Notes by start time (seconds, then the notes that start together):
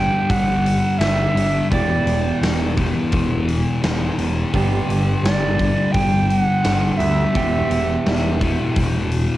Already playing: G2 D3 G3 B3 D4 G4 G5
0.30 G1 F#5, kick, open hi-hat
0.66 open hi-hat
0.98 G1 G2 D3 G3 E5, snare, open hi-hat
1.35 G1, open hi-hat
1.71 E1 E2 B2 E3 G3 E4 G4 D5, kick, open hi-hat
2.05 E1, open hi-hat
2.41 E1, snare, open hi-hat
2.76 E2 B2 E3, kick, open hi-hat
3.12 E1, kick, open hi-hat
3.48 open hi-hat
3.83 E1 E2 B2 E3, snare, open hi-hat
4.18 E1, open hi-hat
4.53 G1 G2 D3 G3 B3 D4 G4, kick, open hi-hat
4.89 G1, open hi-hat
5.23 G1 D5, snare, open hi-hat
5.57 G2 D3 G3, kick, open hi-hat
5.92 G1 G5, kick, open hi-hat
6.28 G5, open hi-hat
6.39 F#5
6.64 G1 G2 D3 G3, snare, open hi-hat
6.98 D2 E5, open hi-hat
7.33 E1 E2 B2 E3 G3 B3 G4, kick, open hi-hat
7.37 E3
7.70 E1, open hi-hat
8.06 E1, snare, open hi-hat
8.40 E2 B2 E3, kick, open hi-hat
8.76 E1, kick, open hi-hat
9.11 open hi-hat